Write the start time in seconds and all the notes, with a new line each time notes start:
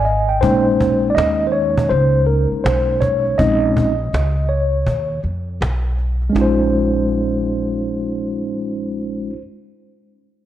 Already playing: G#1 G#5
0.05 D#5, cajon slap
0.29 G5, cajon slap
0.41 A#1 G#3 A#3 C#4 D#4 C5, cajon bass
0.81 cajon bass
1.03 cajon slap
1.10 D5
1.15 D#2 D#5, cajon slap
1.47 C5
1.52 C#5, cajon slap
1.78 cajon bass
1.89 C#2 C5, cajon slap
2.26 A#4, cajon slap
2.52 muted upright bass stroke
2.64 B1 C5, cajon slap
3.01 C#5, cajon bass, cajon slap
3.25 cajon slap
3.38 A#1 G#3 C4 C#4 D#4 D#5, cajon bass
3.77 cajon bass
3.99 cajon slap
4.13 C#2, cajon slap
4.49 C#5, cajon slap
4.74 cajon slap
4.87 D#2, cajon bass
5.23 F2, cajon slap
5.61 B1, cajon slap
5.98 cajon slap
6.22 cajon slap
6.29 G#3 C#4
6.35 A#1 D#4 F4, cajon slap
6.41 C5